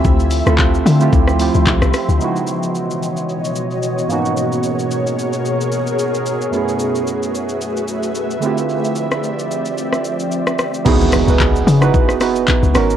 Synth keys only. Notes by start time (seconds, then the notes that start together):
Already playing: A3 C4 E4 F4 G4
0.46 A3 C4 E4 F4 A4
1.00 A3 C4 E4 F4 G4
1.39 A3 C4 E4 F4 G4
2.18 C#3 G#3 B3 D#4
2.23 E4 F#4
4.08 G#2 A#3 B3 C#4
4.12 D#4 F#4
6.51 F#2 A3 B3 C#4
6.56 E4 G#4
8.40 D3 A3 C4 E4
8.45 F4 G4
10.85 B3 D#4 E4 F#4 G#4
11.26 B3 D#4 E4 F#4 B4
11.81 B3 D#4 E4 F#4 B4
12.20 B3 D#4 E4 F#4 B4
12.74 B3 C#4 D#4 F#4 A#4